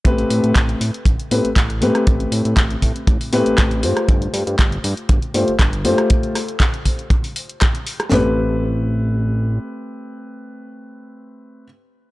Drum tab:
HH |xxoxxxoxxxoxxxox|xxoxxxoxxooxxxox|xxoxxxoxxxoxxxox|xxoxxxoxxooxxxox|
CP |----x-------x---|----x-------x---|----x-------x---|----x-------x---|
SD |------------r--r|------------r--r|------------r--r|--r---------r--r|
FT |----------------|----------------|----------------|----------------|
BD |o---o---o---o---|o---o-o-o---o---|o---o---o---o---|o---o-o-o---o---|

HH |----------------|----------------|
CP |----------------|----------------|
SD |o---------------|----------------|
FT |o---------------|----------------|
BD |----------------|----------------|